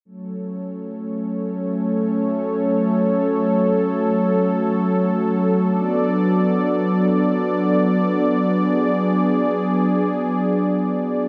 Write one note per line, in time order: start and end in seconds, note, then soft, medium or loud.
0.05 11.28 F#3 medium
0.05 5.66 A3 medium
0.05 5.66 C#4 medium
0.05 8.48 A4 medium
0.05 5.66 C#5 medium
5.70 11.28 B3 medium
5.70 11.28 D4 medium
5.70 11.28 D5 medium
8.52 11.28 G#4 medium